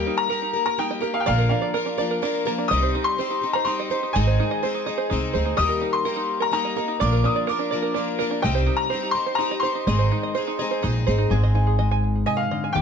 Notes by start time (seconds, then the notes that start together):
Already playing: D#3 G3 A#3 G4 A#4 D#5 G5
0.07 D#4
0.18 A#5
0.29 G3 A#3 G4 A#4
0.42 D#4
0.54 A#3 G4 A#4
0.66 A#4 A#5
0.78 G3 A#3 D#4 G4 A#4 G5
0.91 D#5
1.01 A#3 G4 A#4
1.14 D#4 F5
1.20 G5
1.26 A#1 A#2 D3 F3 A#3 D4 A#4 D5 F5
1.38 A#4
1.49 D4 F5
1.62 D5
1.74 F3 A#3 D4 A#4
1.86 D4
1.98 F3 A#3 D4 A#4 D5
2.11 A#4
2.22 F3 A#3 D4 A#4
2.45 F3 A#3 D4 A#4
2.58 D4
2.68 C2 C3 G3 C4 D#5 D#6
2.73 D#4 G4
2.83 C5
2.95 D#4
3.04 C6
3.18 G3 C4 D#4 G4 C5
3.30 D#4
3.42 C4 D#4 G4
3.53 C5 A#5
3.65 G3 C4 D#4 G4 C6
3.80 D#5
3.90 C4 D#4 G4 C5
4.03 D#4
4.13 G#1 G#2 D#3 G#3 C4 D#4 G#4 D#5 G#5
4.27 C5
4.40 D#4
4.51 D#5
4.63 G#3 C4 D#4 G#4 C5
4.75 D#4
4.86 G#3 C4 D#4 G#4 D#5
4.98 C5
5.10 C2 G#3 C4 D#4
5.14 G#4
5.34 D2 G#3 C4 D#4 G#4 C5
5.45 D#4
5.57 D#2 D#3 G3 A#3 D#4 D#5 D#6
5.61 G4
5.69 A#4
5.82 D#4
5.93 C6
6.05 G3 A#3 D#4 G4 A#4
6.16 D#4
6.40 A#4 A#5
6.51 G3 A#3 D#4 G4 A#5
6.65 D#5
6.76 A#3 D#4 G4 A#4
6.88 D#4
7.00 A#1 A#2 D3 F3 A#3 D4 A#4 D5 D6
7.13 A#4
7.24 D4 D#6
7.36 D5
7.47 F3 A#3 D4 A#4 D6
7.51 A#4
7.59 D4
7.71 F3 A#3 D4 A#4 D5
7.82 A#4
7.94 F3 A#3 D4 A#4
8.19 F3 A#3 D4 A#4
8.31 D4
8.42 C2 C3 G3 C4 D#4 G4 D#5 G5
8.55 C5
8.67 D#4
8.77 A#5
8.90 G3 C4 D#4 C5
8.95 G4
9.03 D#4
9.11 G4 C6
9.17 C4 D#4
9.26 C5
9.35 G3 D#4 A#5
9.40 C4 D#4 G4
9.51 D#5
9.60 G4 C5 C6
9.65 C4 D#4
9.75 D#4
9.87 G#1 G#2 D#3 G#3 C4 D#4 G#4 D#5
9.99 C5
10.12 D#4
10.23 D#5
10.35 G#3 C4 D#4 G#4 C5
10.47 D#4
10.59 G#3 C4 D#4 G#4 D#5
10.71 C5
10.82 A#1 G#3 C4 D#4 G#4
11.07 G#1 C4 D#4 G#4 C5
11.11 G#3
11.18 D#4
11.30 G#1 G#2 G#3 C4 D#4 G#4
11.43 D#5
11.55 D#4 G#5
11.67 G#4
11.79 G#3 D#5
11.91 G#5
12.26 C3 D#5 G#5
12.37 F5
12.51 D3 D#5
12.64 G#5
12.73 D#2 D#3 G3 A#3 D#4 G4 G5
12.77 G4